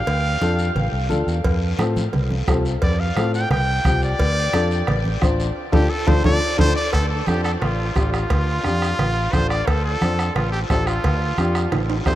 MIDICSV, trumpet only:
0, 0, Header, 1, 2, 480
1, 0, Start_track
1, 0, Key_signature, -1, "minor"
1, 0, Tempo, 342661
1, 105, Time_signature, 4, 2, 24, 8
1, 17021, End_track
2, 0, Start_track
2, 0, Title_t, "Trumpet"
2, 0, Program_c, 0, 56
2, 0, Note_on_c, 0, 77, 98
2, 1263, Note_off_c, 0, 77, 0
2, 3962, Note_on_c, 0, 74, 93
2, 4196, Note_on_c, 0, 77, 82
2, 4217, Note_off_c, 0, 74, 0
2, 4661, Note_off_c, 0, 77, 0
2, 4684, Note_on_c, 0, 79, 93
2, 4913, Note_off_c, 0, 79, 0
2, 4923, Note_on_c, 0, 79, 91
2, 5618, Note_off_c, 0, 79, 0
2, 5651, Note_on_c, 0, 74, 107
2, 7040, Note_off_c, 0, 74, 0
2, 8036, Note_on_c, 0, 67, 90
2, 8256, Note_on_c, 0, 69, 88
2, 8277, Note_off_c, 0, 67, 0
2, 8504, Note_on_c, 0, 72, 97
2, 8525, Note_off_c, 0, 69, 0
2, 8741, Note_off_c, 0, 72, 0
2, 8757, Note_on_c, 0, 74, 114
2, 9220, Note_off_c, 0, 74, 0
2, 9242, Note_on_c, 0, 72, 112
2, 9460, Note_off_c, 0, 72, 0
2, 9470, Note_on_c, 0, 74, 108
2, 9694, Note_off_c, 0, 74, 0
2, 9700, Note_on_c, 0, 69, 100
2, 9921, Note_off_c, 0, 69, 0
2, 9929, Note_on_c, 0, 69, 84
2, 10176, Note_on_c, 0, 67, 87
2, 10197, Note_off_c, 0, 69, 0
2, 10412, Note_off_c, 0, 67, 0
2, 10421, Note_on_c, 0, 69, 93
2, 10531, Note_off_c, 0, 69, 0
2, 10652, Note_on_c, 0, 65, 90
2, 11330, Note_off_c, 0, 65, 0
2, 11372, Note_on_c, 0, 65, 102
2, 13061, Note_on_c, 0, 72, 104
2, 13082, Note_off_c, 0, 65, 0
2, 13294, Note_off_c, 0, 72, 0
2, 13302, Note_on_c, 0, 74, 91
2, 13541, Note_on_c, 0, 69, 97
2, 13562, Note_off_c, 0, 74, 0
2, 13784, Note_off_c, 0, 69, 0
2, 13791, Note_on_c, 0, 69, 93
2, 14458, Note_off_c, 0, 69, 0
2, 14504, Note_on_c, 0, 65, 83
2, 14724, Note_off_c, 0, 65, 0
2, 14733, Note_on_c, 0, 67, 85
2, 14844, Note_off_c, 0, 67, 0
2, 14982, Note_on_c, 0, 69, 92
2, 15226, Note_on_c, 0, 65, 89
2, 15247, Note_off_c, 0, 69, 0
2, 16524, Note_off_c, 0, 65, 0
2, 16897, Note_on_c, 0, 72, 90
2, 17006, Note_off_c, 0, 72, 0
2, 17021, End_track
0, 0, End_of_file